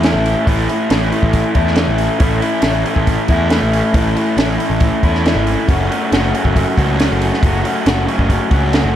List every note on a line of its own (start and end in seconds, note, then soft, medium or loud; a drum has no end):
0.00 0.11 E2 medium
0.00 0.46 A2 medium
0.00 0.47 E3 medium
0.00 0.48 A3 medium
0.00 open hi-hat medium
0.04 0.48 C#4 medium
0.04 0.48 E4 medium
0.04 snare medium
0.14 0.34 A1 medium
0.26 open hi-hat soft
0.46 0.67 A1 medium
0.46 0.89 A2 medium
0.46 0.89 E3 medium
0.46 0.70 A3 medium
0.46 0.69 C#4 medium
0.46 0.68 E4 medium
0.46 kick medium
0.46 open hi-hat medium
0.69 0.90 A3 medium
0.69 0.91 C#4 medium
0.69 0.91 E4 medium
0.69 open hi-hat soft
0.89 1.10 A1 medium
0.89 2.18 A2 medium
0.89 1.76 E3 medium
0.89 1.13 A3 medium
0.89 1.12 C#4 medium
0.89 1.11 E4 medium
0.89 snare loud
0.89 open hi-hat medium
1.11 1.57 A3 medium
1.11 1.56 C#4 medium
1.11 1.55 E4 medium
1.11 open hi-hat soft
1.23 1.42 A1 medium
1.23 kick medium
1.33 kick medium
1.33 open hi-hat medium
1.55 1.85 E2 medium
1.55 1.77 A3 medium
1.55 1.78 C#4 medium
1.55 1.78 E4 medium
1.55 kick medium
1.55 open hi-hat soft
1.67 snare soft
1.76 2.19 E3 medium
1.76 2.20 A3 medium
1.76 2.21 C#4 medium
1.76 2.21 E4 medium
1.76 snare loud
1.76 open hi-hat medium
1.88 2.07 A1 medium
1.98 open hi-hat soft
2.19 2.40 A1 medium
2.19 2.61 A2 medium
2.19 2.62 E3 medium
2.19 2.43 A3 medium
2.19 2.43 C#4 medium
2.19 2.41 E4 medium
2.19 kick loud
2.19 open hi-hat medium
2.41 2.63 A3 medium
2.41 2.63 C#4 medium
2.41 2.64 E4 medium
2.41 open hi-hat soft
2.62 2.83 A1 medium
2.62 3.94 A2 medium
2.62 3.50 E3 medium
2.62 2.88 A3 medium
2.62 2.86 C#4 medium
2.62 2.85 E4 medium
2.62 snare loud
2.62 open hi-hat medium
2.85 3.31 A3 medium
2.85 3.30 C#4 medium
2.85 3.28 E4 medium
2.85 open hi-hat soft
2.96 3.16 A1 medium
2.96 kick medium
3.07 kick medium
3.07 open hi-hat medium
3.28 3.58 E2 medium
3.28 3.50 A3 medium
3.28 3.51 C#4 medium
3.28 3.51 E4 medium
3.28 kick medium
3.28 open hi-hat soft
3.50 3.93 E3 medium
3.50 3.95 A3 medium
3.50 3.95 C#4 medium
3.50 3.95 E4 medium
3.50 snare medium
3.50 open hi-hat medium
3.62 3.81 A1 medium
3.73 open hi-hat soft
3.94 4.13 A1 medium
3.94 4.35 A2 medium
3.94 4.36 E3 medium
3.94 4.17 A3 medium
3.94 4.16 C#4 medium
3.94 4.14 E4 medium
3.94 kick loud
3.94 open hi-hat medium
4.15 4.37 A3 medium
4.15 4.38 C#4 medium
4.15 4.37 E4 medium
4.15 open hi-hat soft
4.36 4.57 A1 medium
4.36 4.81 A2 medium
4.36 4.81 E3 medium
4.36 4.59 A3 medium
4.36 4.58 C#4 medium
4.36 4.56 E4 medium
4.36 snare loud
4.36 open hi-hat medium
4.58 5.06 A3 medium
4.58 5.05 C#4 medium
4.58 5.03 E4 medium
4.58 open hi-hat soft
4.70 4.90 A1 medium
4.80 kick medium
4.80 open hi-hat medium
5.03 5.32 E2 medium
5.03 5.27 A3 soft
5.03 5.27 C#4 medium
5.03 5.27 E4 medium
5.03 kick medium
5.03 open hi-hat soft
5.15 snare soft
5.26 5.68 E3 medium
5.26 5.70 A3 medium
5.26 5.70 C#4 medium
5.26 5.69 E4 medium
5.26 snare medium
5.26 open hi-hat soft
5.35 5.55 G#1 medium
5.47 open hi-hat soft
5.68 5.88 F#1 medium
5.68 6.10 F#2 medium
5.68 6.09 C#3 medium
5.68 5.91 F#3 medium
5.68 5.90 A3 medium
5.68 5.90 C#4 medium
5.68 5.89 F#4 medium
5.68 kick medium
5.68 open hi-hat medium
5.89 6.11 F#3 medium
5.89 6.11 A3 medium
5.89 6.12 C#4 medium
5.89 6.12 F#4 medium
5.89 open hi-hat soft
6.10 6.32 F#1 medium
6.10 7.42 F#2 medium
6.10 6.55 C#3 medium
6.10 6.36 F#3 medium
6.10 6.35 A3 medium
6.10 6.34 C#4 medium
6.10 6.33 F#4 medium
6.10 snare loud
6.10 open hi-hat medium
6.34 6.79 F#3 soft
6.34 6.78 A3 medium
6.34 6.77 C#4 medium
6.34 6.76 F#4 medium
6.34 open hi-hat soft
6.44 6.64 F#1 medium
6.44 kick medium
6.56 kick medium
6.56 open hi-hat medium
6.77 7.07 C#2 medium
6.77 6.97 F#3 medium
6.77 6.99 A3 medium
6.77 6.99 C#4 medium
6.77 6.99 F#4 medium
6.77 kick medium
6.77 open hi-hat soft
6.98 7.43 F#3 medium
6.98 7.44 A3 medium
6.98 7.44 C#4 medium
6.98 7.44 F#4 medium
6.98 snare medium
6.98 open hi-hat medium
7.11 7.30 F#1 medium
7.22 open hi-hat soft
7.34 snare soft
7.43 7.62 F#1 medium
7.43 7.85 F#2 medium
7.43 7.86 C#3 medium
7.43 7.66 F#3 medium
7.43 7.65 A3 medium
7.43 7.65 C#4 medium
7.43 7.63 F#4 medium
7.43 kick loud
7.43 open hi-hat medium
7.64 7.86 F#3 medium
7.64 7.87 A3 medium
7.64 7.87 C#4 medium
7.64 7.88 F#4 medium
7.64 open hi-hat soft
7.86 8.06 F#1 medium
7.86 8.30 F#2 medium
7.86 8.31 C#3 medium
7.86 8.09 F#3 medium
7.86 8.07 A3 medium
7.86 8.07 C#4 medium
7.86 8.06 F#4 medium
7.86 snare loud
7.86 open hi-hat medium
8.07 8.52 F#3 soft
8.07 8.51 A3 soft
8.07 8.50 C#4 medium
8.07 8.49 F#4 medium
8.07 open hi-hat soft
8.19 8.38 F#1 medium
8.19 kick medium
8.30 kick medium
8.30 open hi-hat medium
8.50 8.81 C#2 medium
8.50 8.72 F#3 medium
8.50 8.72 A3 medium
8.50 8.73 C#4 medium
8.50 8.74 F#4 medium
8.50 kick medium
8.50 open hi-hat soft
8.73 8.96 F#3 medium
8.73 8.96 A3 medium
8.73 8.96 C#4 medium
8.73 8.96 F#4 medium
8.73 snare medium
8.73 open hi-hat medium
8.84 8.96 F#1 medium